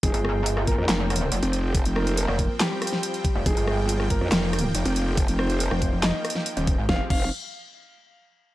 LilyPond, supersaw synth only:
\new Staff \with { instrumentName = "Supersaw synth" } { \time 4/4 \key f \minor \tempo 4 = 140 << { <f g''>1~ | <f g''>1~ | <f g''>1~ | <f g''>1 |
<f aes c' g'>8 r2. r8 | } \\ { c'1~ | c'1 | bes1~ | bes1 |
r1 | } >> }